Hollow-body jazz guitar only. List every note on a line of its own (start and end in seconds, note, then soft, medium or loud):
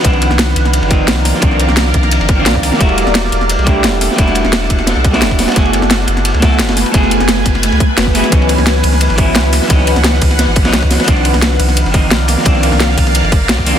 0.02 0.87 D#3 medium
0.02 0.88 F3 medium
0.02 0.89 C4 medium
0.07 0.90 D4 medium
0.88 1.39 D#3 medium
0.88 1.40 F3 medium
0.88 1.41 C4 medium
0.93 1.42 D#4 medium
1.40 2.25 D#3 medium
1.40 2.26 F3 medium
1.40 2.27 C4 medium
1.45 2.28 D4 loud
2.35 2.77 D#3 medium
2.35 2.78 F3 medium
2.35 2.79 C4 medium
2.40 2.79 D4 medium
2.78 3.63 G3 medium
2.78 3.64 A3 medium
2.78 3.65 E4 medium
2.83 3.66 F#4 medium
3.64 4.15 G3 medium
3.64 4.16 A3 medium
3.64 4.16 D4 medium
3.64 4.17 E4 medium
3.69 4.18 G4 medium
4.16 5.01 G3 medium
4.16 5.02 A3 medium
4.16 5.03 D4 medium
4.16 5.03 E4 medium
4.21 5.04 F#4 loud
5.11 5.53 G3 medium
5.11 5.52 A3 medium
5.11 5.54 D4 medium
5.11 5.55 E4 medium
5.16 5.56 F#4 medium
5.54 6.39 A3 medium
5.54 6.40 B3 medium
5.54 6.40 E4 medium
5.54 6.41 F#4 medium
5.59 6.42 G#4 medium
6.40 6.90 A3 medium
6.40 6.92 B3 medium
6.40 6.92 E4 medium
6.40 6.93 F#4 medium
6.45 6.93 A4 medium
6.92 7.77 A3 medium
6.92 7.78 B3 medium
6.92 7.78 E4 medium
6.92 7.79 F#4 medium
6.97 7.80 G#4 loud
8.14 8.30 A3 medium
8.14 8.30 B3 medium
8.14 8.30 E4 medium
8.14 8.30 F#4 medium
8.14 8.31 G#4 medium
8.29 9.15 E3 medium
8.29 9.15 F#3 medium
8.29 9.16 B3 medium
8.29 9.17 C#4 medium
8.35 9.18 D#4 medium
9.16 9.66 E3 medium
9.16 9.67 F#3 medium
9.16 9.68 B3 medium
9.16 9.69 C#4 medium
9.21 9.69 E4 medium
9.67 10.53 E3 medium
9.67 10.54 F#3 medium
9.67 10.55 C#4 medium
9.73 10.56 D#4 loud
10.63 11.05 E3 medium
10.63 11.05 F#3 medium
10.63 11.07 C#4 medium
10.68 11.07 D#4 medium
11.05 11.90 D#3 medium
11.05 11.91 F3 medium
11.05 11.93 C4 medium
11.10 11.93 D4 medium
11.92 12.42 D#3 medium
11.92 12.43 F3 medium
11.92 12.45 C4 medium
11.97 12.45 D#4 medium
12.43 13.29 D#3 medium
12.43 13.29 F3 medium
12.43 13.31 C4 medium
12.48 13.31 D4 loud
13.65 13.79 D#3 medium
13.65 13.79 F3 medium
13.65 13.79 A#3 medium
13.65 13.79 C4 medium
13.65 13.79 D4 medium